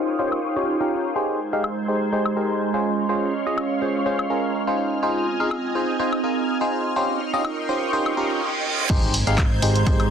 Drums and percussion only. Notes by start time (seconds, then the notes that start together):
0.32 high woodblock
1.64 high woodblock
2.25 high woodblock
3.58 high woodblock
4.19 high woodblock
5.51 high woodblock
6.13 high woodblock
7.45 high woodblock
8.06 high woodblock
8.90 kick, closed hi-hat, crash
9.03 closed hi-hat
9.14 open hi-hat
9.27 closed hi-hat
9.38 kick, clap, closed hi-hat, high woodblock
9.62 open hi-hat
9.76 closed hi-hat
9.87 kick, closed hi-hat
10.00 closed hi-hat, high woodblock